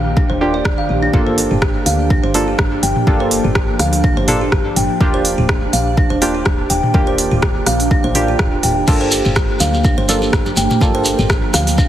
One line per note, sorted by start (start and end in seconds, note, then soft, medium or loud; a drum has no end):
0.00 0.26 A#1 medium
0.00 1.10 D#3 medium
0.00 0.38 A#3 loud
0.00 1.10 A#3 medium
0.00 0.38 D4 medium
0.00 1.10 D4 medium
0.00 0.38 F4 medium
0.00 0.38 G4 loud
0.00 4.97 G4 medium
0.16 0.29 D4 medium
0.16 kick loud
0.30 0.62 D#1 medium
0.30 0.40 C5 loud
0.41 0.53 A#3 medium
0.41 0.53 D4 medium
0.41 0.53 F4 medium
0.41 0.53 G4 loud
0.54 0.64 D5 loud
0.65 0.76 D#1 medium
0.65 0.72 G4 medium
0.65 kick loud
0.65 cross-stick loud
0.78 0.84 F5 medium
0.89 1.09 A#1 medium
0.89 0.96 G4 medium
1.03 1.13 D4 loud
1.13 1.47 G1 loud
1.13 4.97 F3 medium
1.13 4.97 A#3 medium
1.13 2.32 A#3 medium
1.13 8.84 D4 medium
1.13 2.32 D4 medium
1.13 2.32 F4 medium
1.13 1.26 G4 medium
1.13 2.32 A4 loud
1.13 kick loud
1.27 1.37 C5 loud
1.38 open hi-hat medium
1.51 1.83 G1 medium
1.51 1.61 G4 medium
1.51 mid tom medium
1.62 1.74 G4 medium
1.62 kick loud
1.62 cross-stick loud
1.86 2.19 D2 medium
1.86 1.93 F5 medium
1.86 open hi-hat medium
2.10 2.23 D4 medium
2.10 kick loud
2.24 2.55 G1 medium
2.24 2.34 C5 loud
2.34 2.47 A#3 loud
2.34 2.47 D4 medium
2.34 2.47 F4 medium
2.34 2.47 A4 loud
2.34 open hi-hat medium
2.48 2.57 G4 medium
2.59 2.78 G1 medium
2.59 kick loud
2.59 cross-stick loud
2.83 2.93 G1 medium
2.83 2.95 G5 medium
2.83 open hi-hat medium
2.96 mid tom medium
3.07 3.40 G1 loud
3.07 4.25 A#3 loud
3.07 4.26 D4 medium
3.07 4.26 F4 medium
3.07 3.20 G4 medium
3.07 4.26 A4 loud
3.07 kick loud
3.20 3.31 C5 loud
3.31 open hi-hat medium
3.44 3.76 G1 medium
3.44 3.54 G4 medium
3.44 mid tom medium
3.55 3.68 G4 medium
3.55 kick loud
3.55 cross-stick loud
3.79 4.13 D2 medium
3.79 3.87 F5 medium
3.79 cross-stick medium
3.79 open hi-hat medium
3.93 open hi-hat soft
4.04 4.16 D4 medium
4.04 kick loud
4.17 4.49 G1 medium
4.17 4.28 C5 loud
4.28 4.40 A#3 medium
4.28 4.40 D4 medium
4.28 4.40 F4 medium
4.28 4.40 A4 loud
4.28 mid tom medium
4.28 open hi-hat medium
4.41 4.51 G4 medium
4.52 4.72 G1 medium
4.52 4.65 G4 medium
4.52 kick loud
4.52 cross-stick medium
4.76 4.87 G1 medium
4.76 4.89 G5 medium
4.76 mid tom medium
4.76 open hi-hat medium
5.01 5.34 D#1 loud
5.01 8.84 D#3 medium
5.01 6.19 A#3 medium
5.01 11.88 A#3 medium
5.01 6.19 D4 medium
5.01 6.19 F4 medium
5.01 5.13 G4 medium
5.01 6.19 G4 loud
5.01 8.84 G4 medium
5.01 kick loud
5.14 5.24 C5 loud
5.25 open hi-hat medium
5.38 5.70 D#1 medium
5.38 5.48 G4 medium
5.38 mid tom medium
5.49 5.62 G4 medium
5.49 kick loud
5.49 cross-stick loud
5.73 6.06 A#1 loud
5.73 5.80 F5 medium
5.73 open hi-hat medium
5.97 6.10 D4 medium
5.97 kick loud
6.10 6.42 D#1 medium
6.10 6.21 C5 loud
6.22 6.34 A#3 medium
6.22 6.34 D4 medium
6.22 6.34 F4 medium
6.22 6.34 G4 loud
6.22 open hi-hat medium
6.35 6.44 G4 medium
6.45 6.66 D#1 medium
6.45 6.58 G4 medium
6.45 kick loud
6.45 cross-stick medium
6.70 6.81 D#1 medium
6.70 6.83 G5 medium
6.70 open hi-hat medium
6.83 mid tom loud
6.94 7.27 D#1 loud
6.94 8.12 A#3 loud
6.94 8.13 D4 medium
6.94 8.12 F4 medium
6.94 7.07 G4 medium
6.94 8.12 G4 loud
6.94 kick loud
7.07 7.18 C5 loud
7.18 open hi-hat medium
7.31 7.63 D#1 medium
7.31 7.41 G4 medium
7.31 mid tom medium
7.42 7.55 G4 medium
7.42 kick loud
7.42 cross-stick loud
7.66 8.00 A#1 medium
7.66 7.74 F5 medium
7.66 cross-stick medium
7.66 open hi-hat medium
7.80 open hi-hat medium
7.91 8.04 D4 medium
7.91 kick loud
8.04 8.36 A#1 medium
8.04 8.15 C5 loud
8.15 8.85 A#3 medium
8.15 8.85 D4 medium
8.15 8.85 F4 medium
8.15 8.85 G4 loud
8.15 mid tom medium
8.15 open hi-hat medium
8.28 8.38 G4 medium
8.39 8.59 D#1 medium
8.39 8.52 G4 medium
8.39 kick loud
8.39 cross-stick loud
8.63 8.83 D#1 medium
8.63 8.76 G5 medium
8.63 mid tom medium
8.63 open hi-hat medium
8.87 9.21 G1 loud
8.87 11.88 F3 medium
8.87 10.06 A#3 loud
8.87 10.06 D4 medium
8.87 10.80 D4 medium
8.87 10.06 F4 medium
8.87 9.00 G4 medium
8.87 11.88 G4 medium
8.87 10.06 A4 loud
8.87 kick loud
8.87 crash medium
8.87 shekere soft
9.01 9.11 C5 loud
9.11 open hi-hat medium
9.11 shekere medium
9.25 9.57 G1 medium
9.25 9.35 G4 medium
9.25 mid tom medium
9.25 shekere soft
9.35 9.49 G4 medium
9.35 kick loud
9.35 cross-stick loud
9.35 shekere soft
9.60 9.93 D2 medium
9.60 9.67 F5 medium
9.60 open hi-hat medium
9.60 low conga loud
9.60 shekere loud
9.74 shekere soft
9.84 9.97 D4 medium
9.84 kick loud
9.84 high conga medium
9.84 shekere medium
9.98 10.29 G1 medium
9.98 10.08 C5 loud
10.09 10.21 A#3 medium
10.09 10.21 D4 medium
10.09 10.21 F4 medium
10.09 10.21 A4 loud
10.09 open hi-hat medium
10.09 low conga loud
10.09 shekere loud
10.22 10.32 G4 medium
10.22 shekere soft
10.33 10.53 G1 medium
10.33 10.46 G4 medium
10.33 kick loud
10.33 cross-stick loud
10.33 shekere soft
10.46 low conga loud
10.46 shekere soft
10.57 10.68 G1 medium
10.57 10.70 G5 medium
10.57 open hi-hat medium
10.57 high conga medium
10.57 shekere medium
10.70 mid tom medium
10.70 high conga loud
10.70 shekere soft
10.81 11.14 G1 loud
10.81 11.88 A#3 loud
10.81 11.88 C4 medium
10.81 11.88 D4 medium
10.81 11.88 F4 medium
10.81 10.94 G4 medium
10.81 11.88 A4 loud
10.81 kick loud
10.81 low conga loud
10.81 shekere medium
10.95 11.05 C5 loud
11.05 open hi-hat medium
11.05 shekere loud
11.19 11.50 G1 loud
11.19 11.29 G4 medium
11.19 mid tom medium
11.19 shekere soft
11.30 11.42 G4 medium
11.30 kick loud
11.30 cross-stick loud
11.30 shekere medium
11.54 11.87 D2 medium
11.54 11.61 F5 medium
11.54 cross-stick medium
11.54 open hi-hat medium
11.54 low conga loud
11.54 shekere loud
11.67 open hi-hat medium
11.67 shekere soft
11.78 11.88 D4 medium
11.78 kick loud
11.78 shekere medium